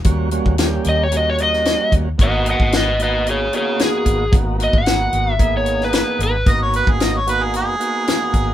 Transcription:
0.04 D#2 G3 A#3 C#4 F#4, kick, closed hi-hat
0.31 G3 A#3 C#4 F#4, closed hi-hat
0.45 D#2, kick
0.58 G3 A#3 C#4 G4, snare, closed hi-hat
0.84 D#2, closed hi-hat
0.89 D#5
1.04 C#5
1.11 G3 A#3 C#4 F#4, closed hi-hat
1.17 D#5
1.30 C#5
1.38 closed hi-hat
1.43 D#5
1.53 snare
1.65 snare, closed hi-hat
1.92 D#2, kick, closed hi-hat
2.18 G#1 A#3 B3 D#4 F#4, kick, closed hi-hat
2.23 D#5 F#5
2.46 closed hi-hat
2.50 D#5 F#5
2.59 G#1, kick
2.72 B4, snare, closed hi-hat
2.77 D#5
2.99 A#3 B3 D#4 F#4, closed hi-hat
3.03 B4 D#5
3.27 G#4, closed hi-hat
3.31 C#5
3.52 A#3 B3 D#4 F#4, closed hi-hat
3.56 G#4 C#5
3.79 G#4, snare, closed hi-hat
4.06 G#1, kick, closed hi-hat
4.31 G#1 A#3 B3 D#4 F#4, kick, closed hi-hat
4.58 A#3 B3 D#4 F#4, closed hi-hat
4.64 D#5
4.73 G#1, kick
4.78 F#5
4.86 A#3 B3 D#4 F#4, snare, closed hi-hat
5.13 G#1, closed hi-hat
5.33 E5
5.38 A#3 B3 D#4 G#4, kick, closed hi-hat
5.57 C#5
5.66 closed hi-hat
5.81 B4, snare
5.93 B4, snare, closed hi-hat
6.19 G#1, closed hi-hat
6.24 B4
6.46 G#1 A#3 B3 D#4 F#4 D#5, kick, closed hi-hat
6.62 C#5
6.73 B4, closed hi-hat
6.87 G#1 G#4, kick
7.00 D#5, snare, closed hi-hat
7.17 C#5
7.27 A#3 B3 D#4 F#4 B4, closed hi-hat
7.43 G#4
7.54 G#4, closed hi-hat
7.79 A#3 B3 D#4 F#4, closed hi-hat
8.07 snare, closed hi-hat
8.34 G#1, kick, closed hi-hat

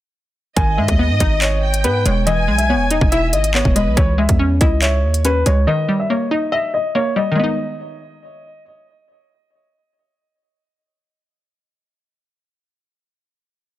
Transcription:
0.56 G#1 D#3 D#5 G#5, kick, closed hi-hat
0.77 G#2 G#3 E5
0.88 D#2, kick, closed hi-hat
0.99 B3
1.10 G#2
1.20 G#1 D#4 D#5, kick, closed hi-hat
1.41 C#5 D#5, clap, closed hi-hat
1.63 G5
1.74 closed hi-hat
1.84 G#2 B3 B4, closed hi-hat
2.06 E1 G#3 C#5, closed hi-hat
2.26 E3 D#5 G#5, closed hi-hat
2.48 B1 G#3
2.58 E5, closed hi-hat
2.69 B3 C#5
2.75 E1
2.91 D#4 D#5, closed hi-hat
3.01 E1, kick
3.12 E4 E5, closed hi-hat
3.33 G#1 D#5, closed hi-hat
3.44 closed hi-hat
3.54 B3 C#5, clap
3.65 E1, kick
3.75 G#3 B4 D#5, closed hi-hat
3.86 B1
3.97 C#2 E3 C#5, kick, closed hi-hat
4.18 G#3 E5
4.29 E2, kick, closed hi-hat
4.39 C#4
4.61 C#2 E4 D#5, kick, closed hi-hat
4.82 C#5 E5, clap, closed hi-hat
5.03 D#2
5.14 closed hi-hat
5.25 C#4 B4, closed hi-hat
5.46 C#2 G#3 C#5, closed hi-hat
5.67 D#3 D#5
5.88 G3
6.00 E5
6.10 A#3 C#5
6.31 D#4 D#5
6.52 D#5 E5
6.74 D#5
6.95 A#3 C#5
7.16 G3 D#5
7.32 D#3 G#3
7.37 B3 D#5
7.44 D#4

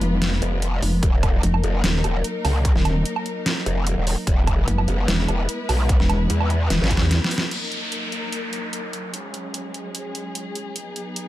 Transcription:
Already playing: G#3 B3 F4 B4
0.01 F1, closed hi-hat
0.22 snare, closed hi-hat
0.42 F1, closed hi-hat
0.62 closed hi-hat
0.82 F1, open hi-hat
1.03 D#1 F#3 A#3 D#4 A#4, kick, closed hi-hat
1.23 kick, closed hi-hat, low woodblock
1.43 F1, closed hi-hat
1.54 low woodblock
1.64 F1, closed hi-hat
1.84 D#1, snare, closed hi-hat
2.04 D#1, closed hi-hat, low woodblock
2.24 closed hi-hat
2.45 C#2, open hi-hat, low woodblock
2.65 kick, closed hi-hat
2.76 D#1, snare
2.85 closed hi-hat, low woodblock
3.06 closed hi-hat
3.16 low woodblock
3.26 closed hi-hat
3.46 snare, closed hi-hat
3.66 F1, closed hi-hat
3.87 closed hi-hat
3.97 D#1
4.07 open hi-hat
4.27 E1 G#3 B3 E4 B4, kick, closed hi-hat
4.47 kick, closed hi-hat, low woodblock
4.68 F#1, closed hi-hat
4.78 low woodblock
4.88 F#1, closed hi-hat
5.08 E1, snare, closed hi-hat
5.28 E1, closed hi-hat, low woodblock
5.49 closed hi-hat
5.69 B1, open hi-hat, low woodblock
5.89 kick, closed hi-hat
6.00 E1, snare
6.10 closed hi-hat, low woodblock
6.30 E2, closed hi-hat
6.41 low woodblock
6.50 closed hi-hat
6.70 E1, snare, closed hi-hat
6.81 G#1, snare
6.91 kick, closed hi-hat
6.97 E2, snare
7.11 snare, closed hi-hat
7.24 snare
7.31 open hi-hat
7.38 snare
7.51 F#3 A#3 D#4 A#4, closed hi-hat, crash, downlifter
7.72 closed hi-hat
7.92 closed hi-hat
8.12 closed hi-hat
8.32 closed hi-hat
8.53 closed hi-hat
8.73 closed hi-hat
8.93 closed hi-hat
9.13 G#3 C#4 G#4, closed hi-hat
9.34 closed hi-hat
9.54 closed hi-hat
9.74 closed hi-hat
9.95 closed hi-hat
10.15 closed hi-hat
10.35 closed hi-hat
10.55 closed hi-hat
10.76 B3 D#4, closed hi-hat
10.96 closed hi-hat
11.16 closed hi-hat

